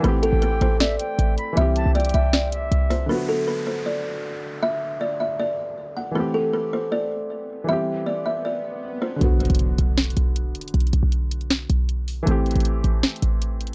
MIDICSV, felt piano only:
0, 0, Header, 1, 2, 480
1, 0, Start_track
1, 0, Tempo, 382166
1, 50, Time_signature, 4, 2, 24, 8
1, 17267, End_track
2, 0, Start_track
2, 0, Title_t, "Felt piano"
2, 0, Program_c, 0, 0
2, 0, Control_c, 0, 64, 127
2, 0, Note_on_c, 0, 52, 86
2, 32, Note_on_c, 0, 57, 76
2, 67, Note_on_c, 0, 60, 83
2, 68, Control_c, 0, 64, 0
2, 102, Note_on_c, 0, 67, 97
2, 315, Control_c, 0, 64, 127
2, 1899, Note_off_c, 0, 52, 0
2, 1918, Note_on_c, 0, 52, 78
2, 1922, Note_off_c, 0, 57, 0
2, 1940, Note_off_c, 0, 60, 0
2, 1953, Note_on_c, 0, 55, 75
2, 1958, Note_off_c, 0, 67, 0
2, 1984, Control_c, 0, 64, 0
2, 1988, Note_on_c, 0, 60, 71
2, 2024, Note_on_c, 0, 67, 92
2, 2205, Control_c, 0, 64, 127
2, 3825, Note_off_c, 0, 52, 0
2, 3843, Note_off_c, 0, 55, 0
2, 3843, Note_on_c, 0, 50, 69
2, 3861, Note_off_c, 0, 60, 0
2, 3879, Note_off_c, 0, 67, 0
2, 3879, Note_on_c, 0, 54, 59
2, 3907, Control_c, 0, 64, 0
2, 3914, Note_on_c, 0, 59, 61
2, 3949, Note_on_c, 0, 66, 70
2, 4139, Control_c, 0, 64, 127
2, 7656, Note_off_c, 0, 50, 0
2, 7674, Note_off_c, 0, 54, 0
2, 7679, Note_on_c, 0, 52, 67
2, 7692, Note_off_c, 0, 59, 0
2, 7709, Note_off_c, 0, 66, 0
2, 7714, Note_on_c, 0, 57, 61
2, 7746, Control_c, 0, 64, 0
2, 7749, Note_on_c, 0, 60, 63
2, 7785, Note_on_c, 0, 67, 71
2, 7960, Control_c, 0, 64, 127
2, 9579, Note_off_c, 0, 52, 0
2, 9597, Note_on_c, 0, 52, 65
2, 9603, Note_off_c, 0, 57, 0
2, 9621, Note_off_c, 0, 60, 0
2, 9633, Note_on_c, 0, 55, 63
2, 9639, Note_off_c, 0, 67, 0
2, 9664, Control_c, 0, 64, 0
2, 9668, Note_on_c, 0, 60, 63
2, 9703, Note_on_c, 0, 67, 86
2, 9922, Control_c, 0, 64, 127
2, 11505, Note_off_c, 0, 52, 0
2, 11506, Note_on_c, 0, 50, 72
2, 11523, Note_off_c, 0, 55, 0
2, 11541, Note_off_c, 0, 60, 0
2, 11541, Note_on_c, 0, 54, 62
2, 11559, Note_off_c, 0, 67, 0
2, 11577, Note_on_c, 0, 59, 63
2, 11586, Control_c, 0, 64, 0
2, 11612, Note_on_c, 0, 66, 71
2, 11799, Control_c, 0, 64, 127
2, 15328, Note_off_c, 0, 50, 0
2, 15345, Note_off_c, 0, 54, 0
2, 15357, Note_on_c, 0, 52, 82
2, 15363, Note_off_c, 0, 59, 0
2, 15381, Note_off_c, 0, 66, 0
2, 15392, Note_on_c, 0, 57, 72
2, 15423, Control_c, 0, 64, 0
2, 15427, Note_on_c, 0, 60, 81
2, 15462, Note_on_c, 0, 67, 92
2, 15637, Control_c, 0, 64, 127
2, 17260, Note_off_c, 0, 52, 0
2, 17267, Note_off_c, 0, 57, 0
2, 17267, Note_off_c, 0, 60, 0
2, 17267, Note_off_c, 0, 67, 0
2, 17267, End_track
0, 0, End_of_file